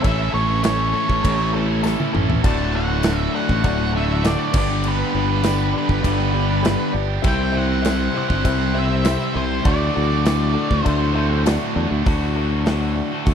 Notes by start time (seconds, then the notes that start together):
0.01 A1 A2 E3 A3 C#4 E4 A4 C#5 E5, kick, crash
0.06 C#4 E4 A4
0.32 A1 A3 C#4 E4 A4 C#5
0.36 E4 A4
0.49 A3 C#4 E4 A4
0.62 A2 E3 A3 C#4 E4 A4 C#5, snare, tambourine, crash
0.67 E4 A4
0.93 A2 E3 A3 C#4 E4 A4 C#5
1.08 A1 A3 C#4 E4 A4, kick
1.23 A1 C#4 E4 A4 C#5, kick, crash
1.38 A3 C#4 E4 A4
1.53 A2 E3 A3 C#4 E4 A4 C#5
1.69 A3 C#4 E4 A4
1.83 A2 E3 A3 C#4 E4 A4 C#5, snare, tambourine
1.87 E4 A4
2.00 high tom
2.12 A1 A3 C#4 E4 A4 C#5, mid tom
2.17 A4
2.29 A3 C#4 E4 A4, floor tom
2.44 D1 D2 A2 D3 A3 D4 F#4 A4 D5 A5, kick, crash
2.74 A2 D3 A3 D4 F#4 A4 D5 F#5
2.88 D3 A3 F#4
3.03 D2 A2 D3 A3 D4 F#4 A4 D5, snare, tambourine, crash
3.19 E5
3.32 D2 A2 D3 A3 D4 F#4 A4 D5 F#5
3.48 A1 D3 A3 F#4, kick
3.64 D1 D4 F#4 A4 D5, kick, crash
3.78 D3 A3 F#4
3.93 D2 A2 D3 A3 D4 F#4 A4 D5
3.97 F#4 E5
4.08 D3 A3 F#4
4.23 D2 A2 D3 A3 D4 F#4 A4 D5, snare, tambourine, crash
4.53 G1 G2 D3 G3 B3 D4 G4 B4 D5, kick, crash
4.58 D5
4.69 G3 B3 D4 G4
4.84 G2 D3 G3 B3 D4 G4, crash
4.88 B4
5.13 G1 G3 B3 D4 G4 B4 D5
5.29 G3 B3 D4 G4
5.43 G2 D3 G3 B3 D4 G4 B4 D5, snare, tambourine, crash
5.73 D4 G4 B4 D5
5.78 B4
5.89 G1 G3 B3 D4 G4, kick
6.03 G1 G2 D3 G3 D4 G4 B4 D5, kick, crash
6.18 G3 B3 D4 G4
6.33 G2 D3 G3 B3 D4 G4 B4 D5
6.48 G3 B3 D4 G4
6.63 G2 D3 G3 B3 D4 G4 B4 D5, snare, tambourine, crash
6.93 G1 G3 B3 D4 G4 B4 D5
7.08 G3 B3 D4 G4
7.22 C2 C3 G3 C4 E4 G4 C5 E5, kick, crash
7.28 G5
7.52 C4 E4 G4 C5 E5
7.56 C5 F#5
7.68 C4 E4 G4 C5
7.82 C3 G3 C4 E4 G4 C5 E5, snare, tambourine, crash
8.14 G3 C4 E4 G4 C5 E5
8.18 C3 F#5
8.28 G1 C4 E4 G4 C5, kick
8.44 C2 E4 G4 C5 E5, kick, crash
8.58 C4 E4 G4 C5
8.73 C3 G3 C4 E4 G4 C5 E5
8.78 E5
8.88 C4 E4 G4 C5
9.02 C3 G3 C4 E4 G4 C5 E5, snare, tambourine, crash
9.33 C2 C4 E4 G4 C5 E5
9.49 C4 E4 G4 C5
9.62 D2 A2 D3 A3 D4 F#4 A4 D5, kick, crash
9.67 D5
9.93 D2 A2 D3 A3 D4 F#4 A4 D5
10.09 D3 A3 F#4
10.24 D2 A2 D3 A3 D4 F#4 A4, snare, tambourine, crash
10.28 F#4
10.54 D2 A2 D3 A3 D4 F#4 A4 D5
10.69 D2 D3 A3 F#4, kick
10.82 D4 F#4 A4 C5 D5, crash
10.86 D2, kick
11.00 D3 A3 F#4
11.13 D2 A2 D3 A3 D4 F#4 A4 E5
11.29 D3 A3 F#4
11.44 D2 A2 D3 A3 D4 F#4 A4 D5, snare, tambourine, crash
11.74 E2 A2 D3 A3 D4 F#4 A4 D5
11.90 D2 D3 A3 F#4
12.04 D2 A2 D3 A3 F#4 A4 D5, kick, open hi-hat
12.35 A2 D3 A3 F#4 A4 D5
12.65 D2 A2 D3 A3 F#4 A4 D5, snare, open hi-hat
12.80 D3 A3 F#4
12.96 F#4 A4 D5, muted distorted electric guitar stroke
13.12 D3 A3 F#4
13.26 D2 F#4 A4 D5, kick, open hi-hat